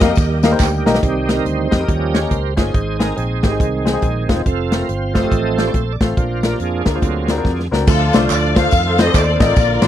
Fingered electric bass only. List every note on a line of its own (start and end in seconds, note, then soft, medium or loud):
0.00 0.11 F2 medium
0.17 0.54 D#2 loud
0.60 0.82 D2 medium
0.86 1.00 B1 medium
1.03 1.39 C2 medium
1.45 1.68 D2 medium
1.73 1.87 F2 medium
1.89 2.25 D#2 medium
2.31 2.53 C#2 medium
2.58 2.72 G1 medium
2.74 3.11 G#1 medium
3.17 3.40 A#1 medium
3.44 3.58 G#1 medium
3.60 3.96 C2 medium
4.02 4.25 A#1 medium
4.46 4.82 F1 medium
4.89 5.25 G1 medium
5.32 5.68 A1 medium
5.74 5.96 A#1 medium
6.01 6.15 A1 medium
6.17 6.53 A#1 medium
6.60 6.82 F2 medium
6.86 7.00 D2 medium
7.02 7.38 D2 medium
7.45 7.67 F2 medium
7.72 7.85 C#2 medium
7.88 8.09 D2 loud
8.14 8.28 C2 medium
8.30 8.66 D2 medium
8.73 9.08 F2 loud
9.14 9.36 D#2 loud
9.40 9.54 A1 medium
9.57 9.78 A#1 loud
9.82 9.88 A1 medium